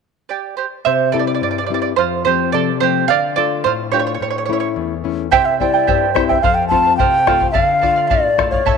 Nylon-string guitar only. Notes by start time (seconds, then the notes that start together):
0.86 C3
1.14 G3 C4 E4
1.41 G2
1.70 G3 C4 E4
1.98 F2
2.25 F3 A3 C4
2.54 C3
2.81 F3 A3 C4
3.09 D3
3.37 A3 D4 F4
3.65 A2
3.92 A3 D4 F4
4.20 A2
4.49 A3 C#4 E4
4.76 E2
5.04 A3 C#4 E4
5.33 C3
5.61 G3 C4 E4
5.88 G2
6.15 G3 C4 E4
6.43 F2
6.71 A3 C4 F4
6.99 C3
7.27 A3 C4 F4
7.55 D3
7.83 A3 D4 F4
8.10 A2
8.38 A3 D4 F4
8.65 A2